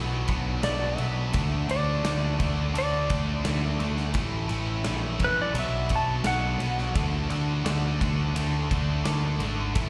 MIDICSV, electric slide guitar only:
0, 0, Header, 1, 2, 480
1, 0, Start_track
1, 0, Tempo, 701754
1, 917, Time_signature, 4, 2, 24, 8
1, 6767, End_track
2, 0, Start_track
2, 0, Title_t, "Electric slide guitar"
2, 0, Program_c, 0, 29
2, 438, Note_on_c, 0, 74, 98
2, 668, Note_off_c, 0, 74, 0
2, 668, Note_on_c, 0, 76, 82
2, 1139, Note_off_c, 0, 76, 0
2, 1169, Note_on_c, 0, 74, 86
2, 1863, Note_off_c, 0, 74, 0
2, 1904, Note_on_c, 0, 74, 95
2, 2825, Note_off_c, 0, 74, 0
2, 3587, Note_on_c, 0, 71, 104
2, 3690, Note_off_c, 0, 71, 0
2, 3705, Note_on_c, 0, 74, 92
2, 3809, Note_off_c, 0, 74, 0
2, 3825, Note_on_c, 0, 76, 101
2, 4045, Note_off_c, 0, 76, 0
2, 4074, Note_on_c, 0, 81, 89
2, 4287, Note_on_c, 0, 78, 97
2, 4290, Note_off_c, 0, 81, 0
2, 5693, Note_off_c, 0, 78, 0
2, 6767, End_track
0, 0, End_of_file